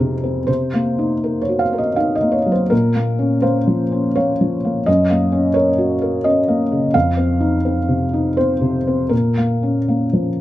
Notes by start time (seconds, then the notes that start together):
Already playing: F2 C4 D#4 G#4 A#4
0.00 C3
0.24 C4
0.47 C3 C5
0.74 A#3
0.99 D#4
1.24 A#4
1.42 C#5
1.49 F#4
1.59 F5
1.73 A#4
1.78 D#5
1.96 D#4 F5
2.15 D#5
2.21 A#3
2.32 C#5
2.46 F#3
2.52 C5
2.70 A#2 A#4
2.95 A#3
3.19 C#4
3.42 A#3 C5
3.67 F3
3.92 C#4
4.15 A#3 C#5
4.41 F3
4.65 A#3
4.86 F#2 D#5
5.10 A#3
5.32 C#4
5.54 A#4 C#5
5.78 F#4
6.02 A#4
6.24 C#4 D#5
6.48 A#3
6.72 C#3
6.94 F2 F5
7.17 C4
7.40 D#4
7.65 C4
7.88 C3
8.14 D#4
8.37 C4 C5
8.61 C3
8.87 C4
9.09 A#2 A#4
9.37 A#3
9.63 C#4
9.88 A#3
10.13 F3